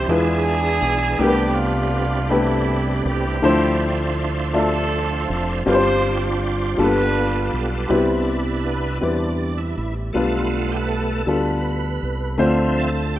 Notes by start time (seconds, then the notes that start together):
Already playing: C4 D4 E4
0.08 E2 E3 G#3 B3 D4 E4 F4 G4 G#4 B4 E5
0.16 G#4
0.82 B1
1.19 C2 C3 G3 A3 B3 D4 G4 A#4 B4
1.27 B4
1.54 A3 B3 F4
2.29 G3 A3 B3 D4 E4 G4 B4
2.36 C3
3.05 C2 C4 E4 G4
3.42 D2 D3 F3 A3 D4 E4 C5 E5
4.53 A3 C4 D4 F4 D5 E5
4.58 A4
5.30 F1 A4
5.66 G1 G2 G3 C4 D4 F4 B4 C5
5.74 C5
6.77 G1 G2 G3 A#3 B3 D4 F4 A4
6.81 B3 D4 B4
7.53 B1
7.89 C2 C3 G3 B3 C4 D4 E4 B4
8.66 B3
9.01 E2 G3 B3 C4 D4 E4 B4
9.58 E4
9.77 A1 E4
10.13 B1 B2 G3 A3 B3 D4 F4 B4
10.72 G4
10.81 B4
10.88 A4
11.26 D2 G3 B3 D4 F4 A4 B4
12.03 C2
12.38 D2 D3 F3 A3 C4 D4 F4 C5 E5
12.77 A4
13.16 G4